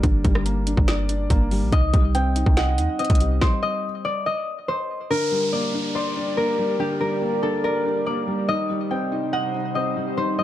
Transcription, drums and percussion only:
0.03 kick, closed hi-hat
0.25 kick, closed hi-hat
0.35 cross-stick
0.46 closed hi-hat
0.67 closed hi-hat
0.77 kick
0.88 snare, closed hi-hat
1.09 closed hi-hat
1.30 kick, closed hi-hat
1.51 open hi-hat
1.72 kick, closed hi-hat
1.94 kick, closed hi-hat
2.15 closed hi-hat
2.36 closed hi-hat
2.46 kick
2.57 snare, closed hi-hat
2.78 closed hi-hat
2.99 closed hi-hat
3.05 closed hi-hat
3.10 kick, closed hi-hat
3.15 closed hi-hat
3.20 closed hi-hat
3.41 kick, snare

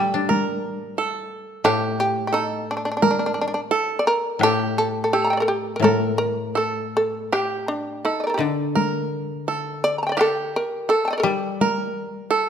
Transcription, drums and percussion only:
0.31 taiko high
1.66 taiko rim
3.03 taiko high
4.41 taiko rim
5.84 taiko high
7.33 taiko rim
8.76 taiko high
10.19 taiko rim
11.61 taiko high

